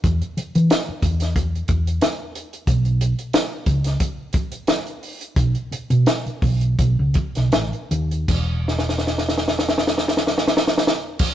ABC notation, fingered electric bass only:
X:1
M:4/4
L:1/16
Q:"Swing 16ths" 1/4=87
K:Bmix
V:1 name="Fingered electric bass" clef=bass
E,, z2 E, z2 E,,4 E,,2 z4 | B,,,3 z3 C,,2 z8 | B,,, z2 B,, z2 B,,,2 B,,, C,, z B,,, A,,, z D,,2 | E,,,16 |]